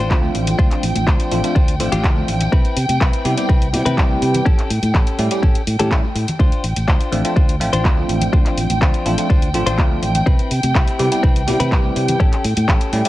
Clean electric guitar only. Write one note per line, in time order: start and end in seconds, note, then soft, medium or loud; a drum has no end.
0.00 0.17 D4 medium
0.00 0.17 F4 medium
0.00 0.17 C5 loud
0.35 muted clean electric guitar stroke soft
0.59 0.83 D4 loud
0.59 0.83 F4 loud
0.59 0.83 C5 loud
1.07 1.31 D4 medium
1.07 1.31 F4 medium
1.07 1.32 C5 medium
1.55 1.74 D4 medium
1.55 1.74 F4 medium
1.55 1.74 C5 medium
1.92 2.10 D4 medium
1.92 2.10 F4 medium
1.92 2.10 G4 medium
2.28 muted clean electric guitar stroke soft
2.52 2.77 C4 loud
2.52 2.77 E4 loud
2.52 2.77 B4 loud
3.01 3.25 C4 medium
3.01 3.25 E4 medium
3.01 3.25 B4 medium
3.49 3.67 C4 medium
3.49 3.68 E4 medium
3.49 3.68 B4 medium
3.85 4.04 C4 medium
3.85 4.04 E4 medium
3.85 4.04 B4 loud
4.22 muted clean electric guitar stroke soft
4.45 4.70 C#4 loud
4.45 4.70 G4 loud
4.45 4.70 A4 loud
4.94 5.19 C#4 medium
4.94 5.19 G4 medium
4.94 5.19 A4 medium
5.43 5.61 C#4 medium
5.43 5.61 G4 medium
5.43 5.61 A4 medium
5.79 5.97 C#4 medium
5.79 5.97 G4 medium
5.79 5.98 A4 medium
6.15 muted clean electric guitar stroke soft
6.39 6.64 D4 loud
6.39 6.64 F4 medium
6.39 6.64 C5 loud
6.88 7.12 D4 medium
6.88 7.12 F4 medium
6.88 7.12 C5 medium
7.36 7.55 D4 medium
7.36 7.55 F4 medium
7.36 7.55 C5 medium
7.73 7.91 D4 medium
7.73 7.91 F4 medium
7.73 7.91 C5 loud
8.09 muted clean electric guitar stroke soft
8.33 8.57 D4 loud
8.33 8.57 F4 medium
8.33 8.57 C5 loud
8.81 9.06 D4 medium
8.81 9.06 F4 medium
8.81 9.06 C5 medium
9.30 9.48 D4 medium
9.30 9.48 F4 medium
9.30 9.48 C5 medium
9.66 9.84 D4 medium
9.66 9.84 F4 medium
9.66 9.85 C5 loud
10.02 muted clean electric guitar stroke soft
10.26 10.51 C4 loud
10.26 10.51 E4 medium
10.26 10.51 B4 loud
10.75 10.99 C4 medium
10.75 10.99 E4 medium
10.75 10.99 G4 medium
11.23 11.42 C4 medium
11.23 11.42 E4 medium
11.23 11.42 B4 medium
11.60 11.78 C4 medium
11.60 11.78 E4 medium
11.60 11.78 B4 loud
11.96 muted clean electric guitar stroke soft
12.20 12.44 C#4 loud
12.20 12.44 G4 loud
12.20 12.44 A4 loud
12.68 12.93 C#4 loud
12.68 12.93 G4 medium
12.68 12.93 A4 medium